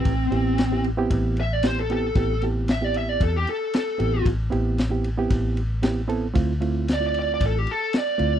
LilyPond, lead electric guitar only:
\new Staff \with { instrumentName = "Lead electric guitar" } { \time 4/4 \key a \minor \tempo 4 = 114 c'4. r4 e''16 d''16 c''16 a'16 a'8~ | a'8 r8 e''16 d''16 e''16 d''16 a'16 g'16 a'8 a'4 | r1 | r4 d''16 d''16 d''16 d''16 a'16 g'16 a'8 d''4 | }